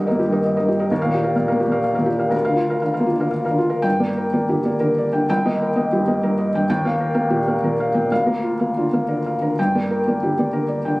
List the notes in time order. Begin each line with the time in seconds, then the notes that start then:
Already playing: C2 G2 G4 A#4 D#5
0.07 A#4 D#5
0.11 A#3
0.19 G4
0.28 G2 A#4
0.33 D#5
0.45 D#5
0.57 G2 A#4 D#5
0.68 G4
0.79 A#4 D#5
0.91 D#2 A#4
1.02 A#4 F5
1.06 A#2
1.14 G4
1.23 A#4 F5
1.36 A#2 F5
1.48 A#3 A#4 F5
1.60 G4
1.67 A#2
1.72 A#4 F5
1.84 F5
1.95 A#2 A#4 F5
2.06 G4
2.18 A#4 F5
2.30 D2 A#4
2.45 D3 A#4 F5
2.56 F4
2.70 A#4 F5
2.82 D3 F5
2.94 A#4 F5
3.00 A#3
3.06 F4
3.16 D3 A#4
3.21 F5
3.31 F5
3.45 A#4 F5
3.50 D3
3.58 F4
3.70 A#4 F5
3.82 G2 G5
4.00 A#3 D5
4.17 A#4
4.33 A#3 D5
4.49 D3 G4
4.65 A#3 D5
4.80 D3 A#4
4.98 D5
5.13 D3 G5
5.30 C2 G5
5.46 A#3 D#5
5.62 A#4
5.76 A#3 D#5
5.92 G2 G4
6.08 A#3 D#5
6.23 G2 A#4
6.38 D#5
6.55 G2 G5
6.70 D#2 G5
6.85 A#3 F5
7.00 A#4
7.15 A#3 F5
7.30 A#2 G4
7.47 A#3 F5
7.64 A#2 A#4
7.80 F5
7.95 A#2 G5
8.11 D2 F5
8.26 A#3 A#4
8.43 F4
8.60 A#3 F5
8.77 D3 F4
8.93 A#3 F5
9.08 D3 A#4
9.26 F5
9.42 D3 A#4
9.59 G2 G5
9.75 A#3 D5
9.90 A#4
10.08 A#3 D5
10.23 D3 G4
10.39 A#3 D5
10.53 D3 A#4
10.68 D5
10.85 D3 G5